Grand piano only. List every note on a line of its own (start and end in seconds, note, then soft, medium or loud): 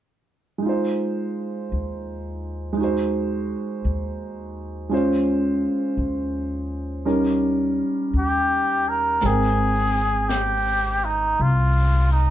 0.58 2.71 G#3 soft
0.58 2.75 D#4 soft
0.66 2.80 F4 soft
0.66 2.81 C5 soft
2.73 4.88 G#3 soft
2.77 4.91 D#4 soft
2.77 4.92 F#4 soft
2.84 4.92 C5 soft
4.89 7.04 G#3 soft
4.89 7.04 C#4 soft
4.89 7.06 F4 soft
4.94 7.06 C5 soft
7.05 9.22 G3 soft
7.05 9.22 C#4 soft
7.05 9.22 D#4 soft
7.05 9.23 A#4 soft
9.22 12.30 G#3 soft
9.22 12.30 C4 soft
9.22 12.30 G5 soft
9.26 12.30 A#4 soft